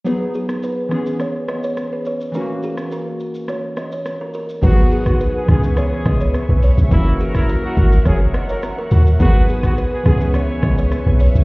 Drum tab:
CC |----------------|----------------|x---------------|----------------|
HH |----------------|----------------|--------------o-|--------------o-|
SH |x-xxx-xxx-xxx-xx|x-xxx-xxx-xxx-xx|x-xxx-xxx-xxx-xx|x-xxx-xxx-xxx-xx|
SD |---r--r-r-r-r---|---r----r-r-r---|---r--r-r-r-r---|---r----r-r-r---|
BD |----------------|----------------|o--o------o-----|o--o--o-o-------|

CC |----------------|
HH |--------------o-|
SH |x-xxx-xxx-xxx-xx|
SD |---r--r-r-r-r---|
BD |o--o------o-----|